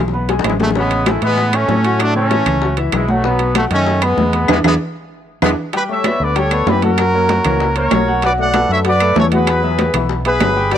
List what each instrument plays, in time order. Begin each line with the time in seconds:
Already playing: fingered electric bass B1
0.08 high bongo
0.13 grand piano B3 B4 B5, high conga
0.29 grand piano G#3 G#4 G#5, high bongo, high conga, high timbale
0.39 low bongo
0.44 fingered electric bass A1, trumpet section G#3 E4, high conga, high timbale, low timbale, claves
0.50 low bongo
0.60 trumpet section F#3 A3, grand piano G#3 G#4 G#5, low bongo, high conga
0.71 low bongo
0.75 grand piano C#3 C#4 C#5, trumpet section G#3 B3, high bongo, high conga
0.91 high bongo, high conga, high timbale
1.06 grand piano G#3 G#4 G#5, trumpet section A3 E4, high bongo, high conga, high timbale, claves
1.22 fingered electric bass A2, grand piano E3 E4 E5, trumpet section G#3 B3, high conga, high timbale
1.38 high bongo, high conga
1.53 trumpet section A3 C#4, grand piano C#4 C#5 C#6, high bongo, high conga, high timbale, claves
1.68 fingered electric bass A2, high bongo, low bongo, high conga, low timbale
1.84 grand piano F#3 F#4 F#5, high bongo, high timbale
2.00 trumpet section A3 D4, high bongo, high conga, high timbale, claves
2.15 grand piano C#3 C#4 C#5, trumpet section A3 C#4, high bongo, high conga
2.31 grand piano E3 E4 E5, high bongo, high conga, high timbale
2.46 fingered electric bass C#2, high conga, low conga, high timbale, claves
2.62 grand piano F#3 F#4 F#5, high bongo, high conga
2.77 grand piano E3 E4 E5, high bongo, high conga, high timbale
2.92 fingered electric bass B1, trumpet section G#3 E4, high bongo, low bongo, high conga, high timbale, claves
3.08 grand piano F#3 F#4 F#5, trumpet section F#3 A3, high bongo, high conga
3.24 grand piano B2 B3 B4, trumpet section F#3 B3, high bongo, high conga
3.39 high bongo, high conga, high timbale
3.55 grand piano F#3 F#4 F#5, trumpet section F#3 A3, high bongo, high conga, high timbale, claves
3.71 fingered electric bass F#2, grand piano D#3 D#4 D#5, trumpet section A3 C#4, high conga, high timbale
3.87 high bongo, high conga
4.02 trumpet section G#3 B3, grand piano B3 B4 B5, high bongo, high conga, high timbale, claves
4.17 fingered electric bass E2, high bongo, low bongo, high conga
4.33 grand piano B3 B4 B5, high bongo, high conga, high timbale
4.48 fingered electric bass E2, trumpet section G#3 B3, grand piano D4 E4 G#4, low bongo, low conga, high timbale, claves
4.64 fingered electric bass E2, trumpet section G#3 B3, grand piano D4 E4 G#4, low bongo, low conga, high timbale, claves
5.42 fingered electric bass E2, trumpet section G#3 B3, grand piano D4 E4 G#4, low bongo, low conga, high timbale, claves
5.73 grand piano G3 G4 G5, trumpet section G4 B4, high bongo, high conga, high timbale
5.89 trombone section A3, trumpet section C#5 E5, high conga
6.04 grand piano B3 B4 D5, high bongo, high conga, high timbale, low timbale, claves
6.20 fingered electric bass D2, trombone section D3, trumpet section B4 D5
6.35 grand piano G3 G4 G5, trumpet section A4 C#5, high bongo, high conga, high timbale
6.51 grand piano B3 B4 D5, high conga, high timbale, claves
6.66 fingered electric bass F#2, trombone section E3, trumpet section G4 B4, high bongo, low bongo, high conga, low timbale
6.82 grand piano F#3 F#4 F#5, trumpet section F#4 A#4, high conga, high timbale
6.98 high bongo, high conga, high timbale, claves
7.13 trombone section F#3, grand piano A#3 A#4 C#5, high bongo, high conga
7.29 high bongo, high conga, high timbale, low timbale
7.45 fingered electric bass C#2, trombone section E3, grand piano A#3 A#4 C#5, high bongo, high conga, low conga, high timbale, claves
7.60 high bongo, high conga
7.76 grand piano A#3 A#4 C#5, trumpet section A#4 C#5, high bongo, high conga, high timbale
7.91 fingered electric bass B1, trombone section F#3, high bongo, low bongo, high conga, high timbale, low timbale, claves
8.08 grand piano F#3 F#4 F#5
8.22 grand piano F#3 F#4 F#5, trumpet section B4 D5, high bongo, high conga, high timbale
8.38 trombone section A3, trumpet section D5 F#5, high conga
8.54 grand piano A3 A4 B4, high bongo, high conga, high timbale, low timbale, claves
8.69 fingered electric bass F#2, trombone section D3, trumpet section C#5 E5
8.85 grand piano F#3 F#4 F#5, trumpet section B4 D5, high bongo, high conga, high timbale
9.00 grand piano A3 A4 B4, high conga, high timbale, claves
9.16 fingered electric bass E2, trombone section E3, trumpet section A4 C#5, high bongo, low bongo, high conga, low timbale
9.32 grand piano F#3 F#4 F#5, trumpet section G#4 B4, high conga, high timbale
9.47 high bongo, high conga, high timbale, claves
9.63 trombone section F#3, grand piano B3 B4 E5, high bongo, high conga
9.79 high bongo, high conga, high timbale, low timbale
9.94 fingered electric bass B1, trombone section E3, grand piano B3 B4 E5, high bongo, high conga, low conga, high timbale, claves
10.09 high bongo, high conga
10.25 grand piano B3 B4 E5, trumpet section G#4 B4, high bongo, high conga, high timbale
10.40 fingered electric bass G1, trombone section F#3, high bongo, low bongo, high conga, high timbale, low timbale, claves
10.56 grand piano G3 G4 G5
10.71 grand piano G3 G4 G5, trumpet section B4 D5, high bongo, high conga, high timbale